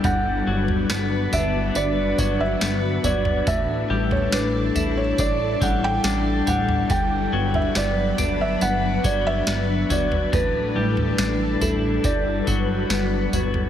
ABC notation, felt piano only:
X:1
M:4/4
L:1/16
Q:1/4=70
K:G
V:1 name="Felt piano"
f6 e2 d2 d e3 d2 | e3 ^c B3 c d2 f g3 f2 | g3 e d3 e f2 d e3 d2 | B6 A2 d6 z2 |]